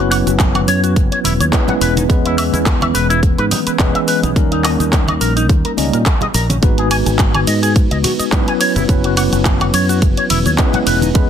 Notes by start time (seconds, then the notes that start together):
Already playing: F#1 F#3 B3 C#4 E4 B4
0.11 F#5, open hi-hat, cabasa, high woodblock
0.27 F#1 F#4, closed hi-hat, muted conga, cabasa
0.40 kick, clap, closed hi-hat, cabasa
0.55 F#5, closed hi-hat, high conga, high woodblock
0.68 F#2 C#5, open hi-hat, cabasa
0.84 F#4, closed hi-hat, cabasa
0.96 F#1, kick, closed hi-hat, cabasa
1.12 C#5, closed hi-hat
1.24 E1 E4, open hi-hat, high conga, cabasa
1.40 D#2 C#5, closed hi-hat, cabasa
1.52 G#3 B3 C#4 E4 B4, kick, clap, closed hi-hat, cabasa
1.68 F#5, closed hi-hat, muted conga, low conga
1.81 E1 B4, open hi-hat, cabasa
1.97 D#4, closed hi-hat, high conga, cabasa
2.09 E2 E3 G#3 B3 C#4 B4, kick, closed hi-hat, cabasa
2.25 E4, closed hi-hat
2.38 E5, open hi-hat, cabasa, high woodblock
2.53 E2 E4, closed hi-hat, muted conga, cabasa
2.66 kick, clap, closed hi-hat, cabasa
2.81 E5, closed hi-hat, high conga, high woodblock
2.95 E1 B4, open hi-hat, cabasa
3.10 E4, closed hi-hat, cabasa
3.23 kick, closed hi-hat, cabasa
3.38 G#2 B4, closed hi-hat
3.51 D#4, open hi-hat, high conga, low conga, cabasa
3.67 B4, muted fingered electric bass stroke, closed hi-hat, cabasa
3.79 E1 E3 G#3 B3 C#4 B4, kick, clap, closed hi-hat, cabasa
3.95 E5, closed hi-hat
4.08 B4, open hi-hat, cabasa
4.23 B1 D#4, closed hi-hat, muted conga, high conga, low conga, cabasa
4.35 D#2 G3 A#3 C#4 D#4 A#4, kick, closed hi-hat, cabasa
4.51 D#4, closed hi-hat
4.64 D#5, clap, open hi-hat, cabasa, high woodblock
4.80 D#2 D#4, closed hi-hat, muted conga, cabasa
4.93 kick, clap, closed hi-hat, cabasa
5.08 D#5, closed hi-hat, high conga, high woodblock
5.21 A#1 A#4, open hi-hat, cabasa
5.36 D#4, closed hi-hat, cabasa
5.49 D#2, kick, closed hi-hat, cabasa
5.65 A#4, closed hi-hat
5.77 C#2 G3 A#3 C#4 D#4 D#5, open hi-hat, high conga, cabasa
5.93 A#2 A#4, closed hi-hat, cabasa
6.06 kick, clap, closed hi-hat, cabasa
6.21 D#5, closed hi-hat, muted conga, low conga
6.34 A#1 A#4, open hi-hat, cabasa
6.50 C#4, closed hi-hat, muted conga, high conga, cabasa
6.62 G#1 G#3 B3 D#4 F#4 B4, kick, closed hi-hat, cabasa
6.78 G#4, closed hi-hat
6.91 G#5, open hi-hat, ride, cabasa, high woodblock
7.06 G#1 G#4, closed hi-hat, muted conga, cabasa
7.19 kick, clap, closed hi-hat, cabasa
7.34 G#5, closed hi-hat, high conga, high woodblock
7.47 G#2 D#5, open hi-hat, ride, cabasa
7.63 G#4, closed hi-hat, cabasa
7.76 kick, closed hi-hat, cabasa
7.91 C#2 D#5, closed hi-hat
8.03 F#4, open hi-hat, ride, high conga, low conga, cabasa
8.19 D#5, muted fingered electric bass stroke, closed hi-hat, cabasa
8.32 G#2 F#3 B3 C#4 E4 B4, kick, clap, closed hi-hat, cabasa
8.48 G#5, closed hi-hat
8.61 C#5, open hi-hat, ride, cabasa
8.76 F#1 E4, closed hi-hat, muted conga, high conga, low conga, cabasa
8.88 F#1 F#3 B3 C#4 E4 B4, kick, closed hi-hat, cabasa
9.04 F#4, closed hi-hat
9.17 F#5, open hi-hat, ride, cabasa, high woodblock
9.32 F#1 F#4, closed hi-hat, muted conga, cabasa
9.45 kick, clap, closed hi-hat, cabasa
9.60 F#5, closed hi-hat, high conga, high woodblock
9.73 F#2 C#5, open hi-hat, ride, cabasa
9.89 F#4, closed hi-hat, cabasa
10.02 F#1, kick, closed hi-hat, cabasa
10.17 C#5, closed hi-hat
10.30 E1 E4, open hi-hat, ride, high conga, cabasa
10.46 D#2 C#5, closed hi-hat, cabasa
10.58 G#3 B3 C#4 E4 B4, kick, clap, closed hi-hat, cabasa
10.73 F#5, closed hi-hat, muted conga, low conga
10.87 E1 B4, open hi-hat, ride, cabasa
11.02 D#4, closed hi-hat, high conga, cabasa
11.14 E2 E3 G#3 B3 C#4 B4, kick, closed hi-hat, cabasa